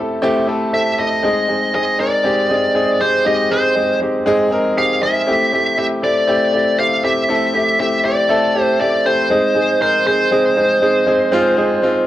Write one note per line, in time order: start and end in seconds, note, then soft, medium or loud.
0.00 0.22 A3 medium
0.00 0.22 C4 medium
0.00 0.23 E4 medium
0.00 0.23 G4 loud
0.00 0.49 A4 loud
0.22 0.42 A3 loud
0.22 0.43 C4 loud
0.22 0.43 E4 loud
0.22 0.43 G4 loud
0.47 0.68 A3 medium
0.47 0.68 C4 medium
0.47 0.68 E4 medium
0.47 0.68 A4 loud
0.73 0.93 A3 medium
0.73 0.93 C4 medium
0.73 0.93 E4 medium
0.73 0.94 A4 medium
0.73 0.99 E5 loud
0.98 1.18 A3 medium
0.98 1.18 C4 medium
0.98 1.19 E4 medium
0.98 1.19 A4 medium
0.98 1.74 D#5 loud
1.23 1.43 G#3 medium
1.23 1.44 C4 medium
1.23 1.44 D#4 medium
1.23 1.44 G#4 loud
1.48 1.69 G#3 medium
1.48 1.69 C4 medium
1.48 1.69 D#4 medium
1.48 1.69 G#4 medium
1.74 1.94 G#3 medium
1.74 1.94 C4 medium
1.74 1.94 D#4 medium
1.74 1.95 G#4 medium
1.74 2.00 D#5 medium
1.99 2.19 G#3 medium
1.99 2.19 C4 medium
1.99 2.19 D#4 medium
1.99 2.20 A#4 medium
1.99 3.04 D5 medium
2.24 2.44 G#3 medium
2.24 2.44 C4 medium
2.24 2.45 D#4 medium
2.24 2.45 G4 loud
2.50 2.70 G#3 medium
2.50 2.70 C4 medium
2.50 2.70 D#4 medium
2.50 2.70 G#4 medium
2.75 2.95 G#3 medium
2.75 2.95 C4 medium
2.75 2.95 D#4 medium
2.75 2.95 G#4 medium
3.00 3.20 G#3 medium
3.00 3.20 C4 medium
3.00 3.21 D#4 medium
3.00 3.21 G4 medium
3.00 3.27 C5 medium
3.25 3.45 G#3 medium
3.25 3.45 C4 medium
3.25 3.46 D#4 medium
3.25 3.46 G4 loud
3.25 3.52 D#5 medium
3.50 3.71 G#3 medium
3.50 3.71 C4 medium
3.50 3.71 D#4 medium
3.50 3.71 G#4 medium
3.50 3.98 C5 medium
3.75 3.96 G#3 medium
3.75 3.96 C4 medium
3.75 3.96 D#4 medium
3.75 3.96 G#4 medium
4.01 4.21 G#3 medium
4.01 4.21 C4 medium
4.01 4.21 D#4 medium
4.01 4.22 G4 medium
4.26 4.46 G#3 loud
4.26 4.46 C4 loud
4.26 4.46 D#4 loud
4.26 4.47 G#4 loud
4.51 4.71 G#3 medium
4.51 4.71 C4 medium
4.51 4.72 D#4 medium
4.51 4.72 A#4 loud
4.76 4.97 G#3 medium
4.76 4.97 C4 medium
4.76 4.97 D#4 medium
4.76 4.97 G4 medium
4.76 5.01 F5 loud
5.02 5.22 G#3 medium
5.02 5.22 C4 medium
5.02 5.22 D#4 medium
5.02 5.22 G#4 medium
5.02 5.77 E5 loud
5.27 5.47 A3 medium
5.27 5.47 C4 medium
5.27 5.47 E4 medium
5.27 5.48 G4 loud
5.52 5.72 A3 medium
5.52 5.72 C4 medium
5.52 5.73 E4 medium
5.52 5.73 G4 medium
5.77 5.98 A3 medium
5.77 5.98 C4 medium
5.77 5.98 E4 medium
5.77 5.98 G4 medium
5.77 5.85 E5 medium
6.02 6.23 A3 medium
6.02 6.23 C4 medium
6.02 6.23 E4 medium
6.02 6.23 G4 medium
6.02 6.79 D5 medium
6.27 6.48 A3 loud
6.27 6.48 C4 medium
6.27 6.48 E4 medium
6.27 6.48 G4 loud
6.53 6.73 A3 medium
6.53 6.73 C4 medium
6.53 6.73 E4 medium
6.53 6.74 G4 medium
6.78 6.98 A3 medium
6.78 6.98 C4 medium
6.78 6.99 E4 medium
6.78 6.99 G4 medium
6.78 7.04 F5 medium
7.03 7.23 A3 medium
7.03 7.24 C4 medium
7.03 7.24 E4 medium
7.03 7.24 G4 medium
7.03 7.79 E5 loud
7.29 7.49 A3 medium
7.29 7.49 C4 medium
7.29 7.49 E4 medium
7.29 7.49 A4 loud
7.54 7.74 A3 medium
7.54 7.74 C4 medium
7.54 7.74 E4 medium
7.54 7.74 G4 medium
7.79 7.99 A3 medium
7.79 7.99 C4 medium
7.79 8.00 E4 medium
7.79 8.00 G4 medium
7.79 8.05 E5 medium
8.04 8.24 A3 medium
8.04 8.24 C4 medium
8.04 8.25 E4 medium
8.04 8.25 G4 medium
8.04 8.62 D5 medium
8.29 8.49 A3 loud
8.29 8.50 C4 medium
8.29 8.50 E4 medium
8.29 8.50 A4 loud
8.54 8.75 A3 medium
8.54 8.75 C4 medium
8.54 8.75 E4 medium
8.54 8.75 G4 medium
8.62 8.80 C5 medium
8.79 9.00 A3 medium
8.79 9.00 C4 medium
8.79 9.00 E4 medium
8.79 9.00 G4 medium
8.79 9.04 D5 medium
9.05 9.25 A3 medium
9.05 9.25 C4 medium
9.05 9.25 E4 medium
9.05 9.26 G4 medium
9.05 9.81 C5 medium
9.30 9.50 G#3 medium
9.30 9.50 C4 medium
9.30 9.51 D#4 medium
9.30 9.51 G#4 loud
9.55 9.75 G#3 medium
9.55 9.76 C4 medium
9.55 9.76 D#4 medium
9.55 9.76 G#4 medium
9.80 10.01 G#3 medium
9.80 10.01 C4 medium
9.80 10.01 D#4 medium
9.80 10.01 A#4 medium
9.80 10.06 C5 medium
10.06 10.26 G#3 medium
10.06 10.26 C4 medium
10.06 10.26 D#4 medium
10.06 10.27 G#4 medium
10.06 12.07 C5 medium
10.31 10.51 G#3 medium
10.31 10.51 C4 medium
10.31 10.52 D#4 medium
10.31 10.52 G#4 loud
10.57 10.77 G#3 medium
10.57 10.77 C4 medium
10.57 10.77 D#4 medium
10.57 10.77 G#4 medium
10.82 11.02 G#3 medium
10.82 11.02 C4 medium
10.82 11.02 D#4 medium
10.82 11.02 G#4 medium
11.07 11.27 G#3 medium
11.07 11.27 C4 medium
11.07 11.27 D#4 medium
11.07 11.27 G#4 medium
11.32 11.52 G#3 loud
11.32 11.52 C4 loud
11.32 11.52 D#4 loud
11.32 11.53 F4 loud
11.57 11.77 G#3 medium
11.57 11.77 C4 medium
11.57 11.77 D#4 medium
11.57 11.78 G#4 medium
11.82 12.02 G#3 medium
11.82 12.03 C4 medium
11.82 12.03 D#4 medium
11.82 12.03 F4 loud